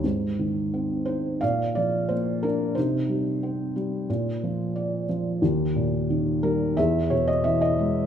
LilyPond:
<<
  \new Staff \with { instrumentName = "Felt piano" } { \time 4/4 \key aes \lydian \tempo 4 = 89 << { r4. c''8 f''8 d''8 c''8 bes'8 | c''2.~ c''8 r8 | r4. bes'8 e''8 des''16 ees''16 e''16 ees''8. | } \\ { r2 d''2 | ees'2.~ ees'8 r8 | r2 gis'2 | } >> }
  \new Staff \with { instrumentName = "Felt piano" } { \clef bass \time 4/4 \key aes \lydian aes,8 ees8 c'8 ees'8 bes,8 f8 bes8 d'8 | c8 g8 c'8 g8 bes,8 f8 d''8 f8 | ees,8 bes,8 ees8 g8 e,8 b,8 e8 gis8 | }
>>